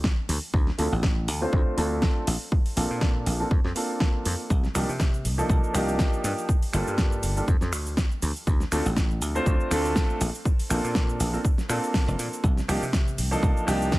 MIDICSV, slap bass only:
0, 0, Header, 1, 2, 480
1, 0, Start_track
1, 0, Tempo, 495868
1, 522, Time_signature, 4, 2, 24, 8
1, 13540, End_track
2, 0, Start_track
2, 0, Title_t, "Slap bass"
2, 0, Program_c, 0, 36
2, 279, Note_on_c, 0, 38, 101
2, 361, Note_off_c, 0, 38, 0
2, 519, Note_on_c, 0, 38, 92
2, 676, Note_off_c, 0, 38, 0
2, 760, Note_on_c, 0, 38, 89
2, 842, Note_off_c, 0, 38, 0
2, 892, Note_on_c, 0, 33, 77
2, 1239, Note_off_c, 0, 33, 0
2, 1239, Note_on_c, 0, 38, 79
2, 1397, Note_off_c, 0, 38, 0
2, 1479, Note_on_c, 0, 38, 88
2, 1561, Note_off_c, 0, 38, 0
2, 1718, Note_on_c, 0, 38, 99
2, 2010, Note_off_c, 0, 38, 0
2, 2199, Note_on_c, 0, 34, 98
2, 2281, Note_off_c, 0, 34, 0
2, 2680, Note_on_c, 0, 34, 92
2, 2761, Note_off_c, 0, 34, 0
2, 2810, Note_on_c, 0, 46, 78
2, 3158, Note_on_c, 0, 34, 75
2, 3173, Note_off_c, 0, 46, 0
2, 3316, Note_off_c, 0, 34, 0
2, 3398, Note_on_c, 0, 41, 79
2, 3481, Note_off_c, 0, 41, 0
2, 3529, Note_on_c, 0, 41, 95
2, 3597, Note_off_c, 0, 41, 0
2, 4120, Note_on_c, 0, 41, 85
2, 4202, Note_off_c, 0, 41, 0
2, 4359, Note_on_c, 0, 36, 95
2, 4517, Note_off_c, 0, 36, 0
2, 4599, Note_on_c, 0, 36, 92
2, 4681, Note_off_c, 0, 36, 0
2, 4731, Note_on_c, 0, 48, 82
2, 5079, Note_on_c, 0, 36, 79
2, 5094, Note_off_c, 0, 48, 0
2, 5237, Note_off_c, 0, 36, 0
2, 5320, Note_on_c, 0, 36, 85
2, 5401, Note_off_c, 0, 36, 0
2, 5561, Note_on_c, 0, 36, 96
2, 5852, Note_off_c, 0, 36, 0
2, 6040, Note_on_c, 0, 43, 98
2, 6122, Note_off_c, 0, 43, 0
2, 6521, Note_on_c, 0, 31, 86
2, 6602, Note_off_c, 0, 31, 0
2, 6653, Note_on_c, 0, 43, 81
2, 7001, Note_on_c, 0, 31, 81
2, 7015, Note_off_c, 0, 43, 0
2, 7157, Note_off_c, 0, 31, 0
2, 7240, Note_on_c, 0, 41, 89
2, 7322, Note_off_c, 0, 41, 0
2, 7372, Note_on_c, 0, 41, 92
2, 7481, Note_off_c, 0, 41, 0
2, 7481, Note_on_c, 0, 38, 80
2, 7771, Note_off_c, 0, 38, 0
2, 7961, Note_on_c, 0, 38, 95
2, 8042, Note_off_c, 0, 38, 0
2, 8200, Note_on_c, 0, 38, 96
2, 8357, Note_off_c, 0, 38, 0
2, 8442, Note_on_c, 0, 38, 86
2, 8522, Note_off_c, 0, 38, 0
2, 8573, Note_on_c, 0, 33, 76
2, 8922, Note_off_c, 0, 33, 0
2, 8922, Note_on_c, 0, 38, 81
2, 9078, Note_off_c, 0, 38, 0
2, 9160, Note_on_c, 0, 38, 84
2, 9241, Note_off_c, 0, 38, 0
2, 9401, Note_on_c, 0, 38, 98
2, 9691, Note_off_c, 0, 38, 0
2, 9881, Note_on_c, 0, 34, 94
2, 9962, Note_off_c, 0, 34, 0
2, 10361, Note_on_c, 0, 34, 88
2, 10442, Note_off_c, 0, 34, 0
2, 10493, Note_on_c, 0, 46, 80
2, 10841, Note_on_c, 0, 34, 76
2, 10855, Note_off_c, 0, 46, 0
2, 10997, Note_off_c, 0, 34, 0
2, 11320, Note_on_c, 0, 46, 88
2, 11402, Note_off_c, 0, 46, 0
2, 11692, Note_on_c, 0, 29, 94
2, 11759, Note_off_c, 0, 29, 0
2, 11801, Note_on_c, 0, 46, 85
2, 11882, Note_off_c, 0, 46, 0
2, 12039, Note_on_c, 0, 36, 95
2, 12196, Note_off_c, 0, 36, 0
2, 12280, Note_on_c, 0, 36, 88
2, 12362, Note_off_c, 0, 36, 0
2, 12412, Note_on_c, 0, 48, 79
2, 12760, Note_on_c, 0, 36, 77
2, 12775, Note_off_c, 0, 48, 0
2, 12917, Note_off_c, 0, 36, 0
2, 12998, Note_on_c, 0, 36, 89
2, 13081, Note_off_c, 0, 36, 0
2, 13239, Note_on_c, 0, 36, 93
2, 13530, Note_off_c, 0, 36, 0
2, 13540, End_track
0, 0, End_of_file